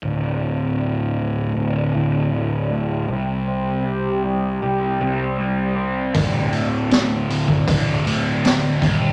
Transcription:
<<
  \new Staff \with { instrumentName = "Distorted electric guitar" } { \clef bass \time 4/4 \tempo 4 = 79 d,8 a,8 d8 d,8 d8 a,8 d,8 a,8 | c8 c'8 g'8 g8 g'8 c'8 g8 c'8 | d,8 a,8 d8 d,8 d8 a,8 d,8 ees,8 | }
  \new Staff \with { instrumentName = "Picked electric bass" } { \clef bass \time 4/4 d,,2 d,,8 d,,4. | c,2 c,8 c,4. | d,,2 d,,8 d,,4 ees,,8 | }
  \new DrumStaff \with { instrumentName = "Drums" } \drummode { \time 4/4 r4 r4 r4 r4 | r4 r4 r4 r4 | <hho bd>8 hho8 <hho sn>8 hho16 bd16 <hho bd>8 hho8 <hho sn>8 <hho bd>8 | }
>>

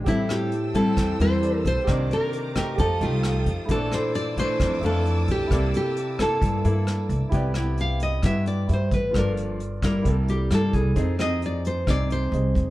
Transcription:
<<
  \new Staff \with { instrumentName = "Violin section" } { \time 4/4 \key c \mixolydian \tempo 4 = 132 << { <g'' a'' e'''>1 | <bes'' d'''>2 <f'' g'' ees'''>2 | <a'' d''' e'''>1~ | <a'' d''' e'''>1 |
\key c \major r1 | r1 | r1 | } \\ { c''1~ | c''2 a'2 | c''1 | bes1 |
r1 | r1 | r1 | } >> }
  \new Staff \with { instrumentName = "Grand piano" } { \time 4/4 \key c \mixolydian <g' a' c'' e''>2. <g' a' c'' d''>4 | <ees' g' bes' d''>2 <g' a' c'' ees''>2 | <e' a' c'' d''>2~ <e' a' c'' d''>8 <a' c'' e'' f''>4. | <e' a' d''>2~ <e' a' d''>8 <e' a' e''>4. |
\key c \major <e' g' b' d''>2. <e' g' b' e''>4 | <f' a' bes' d''>2 <e' g' bes' d''>2 | <aes' c'' ees''>2. <aes' c'' ees''>4 | }
  \new Staff \with { instrumentName = "Nylon-string guitar" } { \time 4/4 \key c \mixolydian e'8 g'4 a'4 c''4 c''8~ | c''8 bes'4 bes'8 a'8 f'4 r8 | a'8 c''8 d''8 c''4 a'4 g'8~ | g'8 g'4 a'2 r8 |
\key c \major r4 f''8 ees''8 e''8 d''8 c''8 b'8 | bes'8 r4 bes'8 a'8 g'8 a'8 aes'8~ | aes'8 ees''8 d''8 c''8 d''8 c''4. | }
  \new Staff \with { instrumentName = "Nylon-string guitar" } { \time 4/4 \key c \mixolydian << { <g c' e'>4 r8 <g c' e'>4 <g c' e'>4. | <ees bes d'>4. <a ees' g'>4 <a ees' g'>4. | <e a d'>4. <e a d'>4 <e a d'>4. | <bes e' a'>4 r8 <bes e' a'>4 <bes e' a'>4. |
\key c \major <b e' g'>8 <b e' g'>4. <b e' g'>2 | <f bes d'>4 r8 <g bes e'>4. <g bes e'>4 | <c' ees' aes'>8 <c' ees' aes'>4. <c' ees' aes'>2 | } \\ { a,2 e2 | c2 f2 | bes,2 f,2 | c2 g,2 |
c2 g,2 | g,2 c2 | f2 c2 | } >> }
  \new Staff \with { instrumentName = "Upright bass" } { \clef bass \time 4/4 \key c \mixolydian a,,8 r4. e,8 e,4 b,,16 r16 | c,8 r4. f,8 c,4 f,16 r16 | bes,,8 r4. f,8 f,4 bes,,16 r16 | c,8 r4. g,8 g,4 c,16 r16 |
\key c \major c,2 g,4 g,8 a,,8 | g,,2 c,4 g,8 c,8 | f,2 c,4 c,8 f,8 | }
  \new DrumStaff \with { instrumentName = "Drums" } \drummode { \time 4/4 <hh bd>8 <hh ss>8 hh8 <hh bd>8 <hh bd ss>8 hh8 hh8 <hh bd>8 | <hh bd ss>8 hh8 hh8 <hh bd ss>8 <hh bd>8 hh8 <hh ss>8 <hh bd>8 | <hh bd>8 <hh ss>8 hh8 <hh bd>8 <hh bd ss>8 hh8 hh8 <hh bd>8 | <hh bd ss>8 hh8 hh8 <hh bd ss>8 <hh bd>8 hh8 <hh ss>8 <hh bd>8 |
<hh bd>8 <hh ss>8 hh8 hh8 <hh bd ss>8 hh8 hh8 <hh bd>8 | <hh bd ss>8 hh8 hh8 <hh bd ss>8 <hh bd>8 hh8 <hh ss>8 <hh bd>8 | <hh bd>8 <hh ss>8 hh8 hh8 <hh bd ss>8 hh8 hh8 <hh bd>8 | }
>>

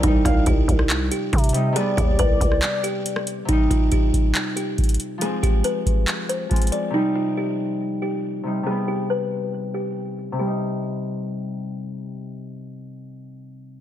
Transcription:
<<
  \new Staff \with { instrumentName = "Soft synth lead" } { \time 4/4 \key c \minor \tempo 4 = 139 r8 f''8 r2 r8 ees''8 | d''1 | r1 | r1 |
r1 | r1 | r1 | r1 | }
  \new Staff \with { instrumentName = "Kalimba" } { \time 4/4 \key c \minor ees'8 f'8 g'4. g'4. | aes'8 g'8 b'4. g'4. | ees'8 f'8 g'4. g'4. | aes'8 g'8 b'4. c''4 d''8 |
ees'8 f'8 g'4. g'4. | aes'8 g'8 b'4. g'4. | g'2. r4 | r1 | }
  \new Staff \with { instrumentName = "Harp" } { \clef bass \time 4/4 \key c \minor <c g ees'>2.~ <c g ees'>8 <c g ees'>8 | <c g b>1 | <c g ees'>1 | <f aes c'>2. <f aes c'>4 |
<c g ees'>2.~ <c g ees'>8 <c g ees'>8 | <c g b>1 | <c g ees'>1~ | <c g ees'>1 | }
  \new Staff \with { instrumentName = "808-style bass" } { \clef bass \time 4/4 \key c \minor c,8 c,8 c,8 c,4 r8 c4 | r8 ees,8 c,8 c,8 r2 | r1 | r1 |
r1 | r1 | r1 | r1 | }
  \new DrumStaff \with { instrumentName = "Drums" } \drummode { \time 4/4 <hh bd>8 <hh bd ss>8 <hh bd>8 <hh bd>16 ss16 <hc hh>8 hh8 <hh bd>32 hh32 hh32 hh32 hh8 | hh8 <hh bd>8 <hh bd>8 <hh bd>16 ss16 <hc hh>8 hh8 hh16 ss16 hh8 | <hh bd>8 <hh bd>8 <hh bd>8 <hh bd>8 <hc hh>8 hh8 <hh bd>32 hh32 hh32 hh32 hh8 | hh8 <hh bd>8 hh8 <hh bd>8 <hc hh>8 hh8 <hh bd>32 hh32 hh32 hh32 hh8 |
r4 r4 r4 r4 | r4 r4 r4 r4 | r4 r4 r4 r4 | r4 r4 r4 r4 | }
>>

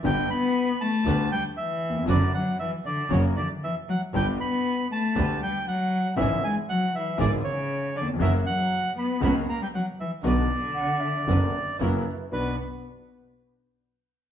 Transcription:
<<
  \new Staff \with { instrumentName = "Bandoneon" } { \time 4/4 \key b \minor \tempo 4 = 118 g''8 b''4 a''4 g''8 e''4 | d''8 fis''8 e''8 d''8 cis''8 d''8 e''8 fis''8 | g''8 b''4 a''4 g''8 fis''4 | e''8 gis''8 fis''8 e''8 d''8 cis''4 d''8 |
e''8 fis''4 b''8 b''8 ais''16 g''16 fis''8 e''8 | d''2. r4 | b'8 r2. r8 | }
  \new Staff \with { instrumentName = "Flute" } { \time 4/4 \key b \minor r1 | r1 | r1 | r1 |
r1 | r4 fis''8 e''8 d''4 b'4 | d''8 r2. r8 | }
  \new Staff \with { instrumentName = "String section" } { \time 4/4 \key b \minor <d' g' b'>8 r4. <d' g' b'>8 r4. | <d' fis' b'>8 r4. <cis' fis' ais'>8 r4. | <d' g' b'>8 r4. <d' g' b'>8 r4. | <cis' e' gis'>8 r4. <cis' e' gis'>8 r4. |
<cis' fis' ais'>8 r4. <cis' fis' ais'>8 r4. | <d' fis' b'>8 r4. <d' fis' b'>8 r8 <e' fis' ais'>8 r8 | <d' fis' b'>8 r2. r8 | }
  \new Staff \with { instrumentName = "Cello" } { \clef bass \time 4/4 \key b \minor g8 b4 a4 g8 e4 | d8 fis8 e8 d8 cis8 d8 e8 fis8 | g8 b4 a4 g8 fis4 | e8 gis8 fis8 e8 d8 cis4 d8 |
e8 fis4 b8 b8 ais16 g16 fis8 e8 | d2. r4 | b8 r2. r8 | }
  \new Staff \with { instrumentName = "Grand piano" } { \clef bass \time 4/4 \key b \minor <g,, g, d g b g'>8 r4. <d, d g b g'>8 r4 r32 dis,32 e,32 eis,32 | <fis, d fis b fis'>8 r4. <fis, cis fis ais fis'>8 r4. | <g,, g, d g b g'>8 r4. <d, d g b g'>8 r4. | <gis,, gis, cis gis b e'>8 r4. <gis,, gis, cis gis b e'>8 r4 r32 dis,32 e,32 eis,32 |
<fis, cis fis ais fis'>8 r4. <cis, cis fis ais fis'>8 r4. | <b,, b, d fis b fis'>8 r4. <fis,, fis, d fis b fis'>8 r8 <fis, cis fis ais e'>8 r8 | <b,, b d' fis'>8 r2. r8 | }
  \new Staff \with { instrumentName = "Double bass" } { \clef bass \time 4/4 \key b \minor g,,8 r4. d,8 r4. | fis,,8 r4. fis,,8 r4. | g,,8 r4. d,8 r4. | gis,,8 r4. gis,,8 r4. |
fis,,8 r4. cis,8 r4. | b,,8 r4. fis,,8 r8 fis,,8 r8 | b,,8 r2. r8 | }
>>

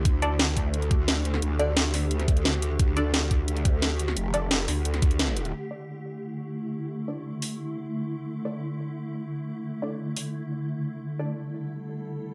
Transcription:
<<
  \new Staff \with { instrumentName = "Synth stab" } { \time 4/4 \key c \mixolydian \tempo 4 = 175 r8 <d' a' d''>8 r2. | r8 <d' a' d''>8 r2. | r8 <d' a' d''>8 r2. | r8 <d' a' d''>8 r2. |
r8 <d' a' d''>8 r2. | r8 <d' a' d''>8 r2. | r8 <d' a' d''>8 r2. | r8 <d' a' d''>8 r2. |
r8 <d' a' d''>8 r2. | }
  \new Staff \with { instrumentName = "Synth drone" } { \time 4/4 \key c \mixolydian << { <a g'>1~ | <a g'>1~ | <a g'>1~ | <a g'>1 |
<a e'>1~ | <a e'>1~ | <a e'>1~ | <a e'>1 |
<g a'>1 | } \\ { d1~ | d1~ | d1~ | d1 |
d1~ | d1~ | d1~ | d1~ |
d1 | } >> }
  \new Staff \with { instrumentName = "Wobble bass" } { \clef bass \time 4/4 \key c \mixolydian d,1 | d,1 | d,1 | f,,4. d,2~ d,8 |
r1 | r1 | r1 | r1 |
r1 | }
  \new DrumStaff \with { instrumentName = "Drums" } \drummode { \time 4/4 <hh bd>8 hh8 <hh sn>8 <hh bd>8 hh16 hh16 <hh bd>8 <hh sn>8 hh16 sn16 | hh8 hh8 <hh sn>8 <hho sn>8 hh16 <hh sn>16 <hh bd>16 hh16 <hh sn>16 sn16 hh8 | <hh bd>8 hh8 <hh sn>8 <hh bd>8 hh16 hh16 <hh bd>8 <hh sn>8 hh16 sn16 | hh8 hh8 <hh sn>8 <hho sn>8 hh16 <hh sn>16 <hh bd>16 hh16 <hh sn>16 sn16 hh16 hh16 |
r4 r4 r4 r4 | r4 r8 hho8 r4 r4 | r4 r4 r4 r4 | r4 r8 hho8 r4 r4 |
r4 r4 r4 r4 | }
>>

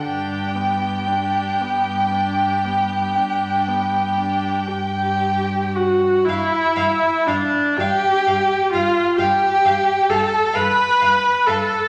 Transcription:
<<
  \new Staff \with { instrumentName = "Violin" } { \time 12/8 \key g \major \tempo 4. = 39 g'1~ g'8 g''4 fis''8 | e''4 d''8 g''4 f''8 g''4 a''8 b''4 a''8 | }
  \new Staff \with { instrumentName = "Violin" } { \time 12/8 \key g \major g''1~ g''4~ g''16 r8. | f''8 f''8 f''8 f''8 f''8 f''8 f''8 f''8 f''8 f''8 f''8 f''8 | }
  \new Staff \with { instrumentName = "Viola" } { \time 12/8 \key g \major d'8 b8 d'8 b8 d'8 b8 d'8 b8 d'8 g'4 fis'8 | e'4 d'8 g'4 f'8 g'4 a'8 b'4 a'8 | }
  \new Staff \with { instrumentName = "Cello" } { \clef bass \time 12/8 \key g \major g,4. g,4. g,4. g,4. | g,8 g,8 g,8 g,8 g,8 g,8 g,8 g,8 g,8 g,8 g,8 g,8 | }
>>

